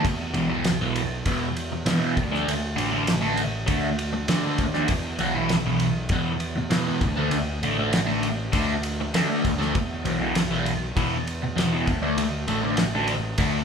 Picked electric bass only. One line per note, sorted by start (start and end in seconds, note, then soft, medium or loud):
0.05 0.32 E2 medium
0.34 1.21 B1 medium
1.26 1.82 E2 medium
1.86 2.18 E3 medium
2.17 2.44 D2 medium
2.47 2.75 D2 loud
2.78 3.64 A1 medium
3.68 4.25 D2 medium
4.29 4.60 D3 medium
4.59 4.86 D#2 medium
4.89 5.17 E2 loud
5.19 6.06 B1 loud
6.09 6.66 E2 medium
6.70 7.02 E3 medium
7.01 7.29 D2 medium
7.31 7.59 D2 loud
7.61 8.49 A1 loud
8.53 9.10 D2 medium
9.15 9.46 D3 medium
9.45 9.72 D2 medium
9.75 10.02 E2 loud
10.04 10.91 B1 loud
10.96 11.52 E2 medium
11.56 11.87 E2 medium
11.87 12.14 D2 medium
12.17 12.45 D2 loud
12.47 13.34 A1 loud
13.38 13.64 D2 medium